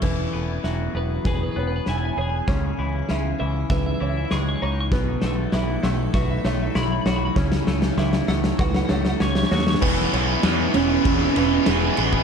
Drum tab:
CC |x-------------------------------|--------------------------------|--------------------------------|--------------------------------|
RD |--------------------------------|--------------------------------|--------------------------------|--------------------------------|
SD |o-------o-------o-------o-------|o-------o-------o-------o-------|o---o---o---o---o---o---o---o---|o-o-o-o-o-o-o-o-o-o-o-o-o-oooooo|
BD |o---------------o---------------|o---------------o---------------|o---------------o---------------|o---------------o---------------|

CC |x-------------------------------|
RD |----x---x---x---x---x---x---x---|
SD |--------o---------------o-------|
BD |o---------------o-------------o-|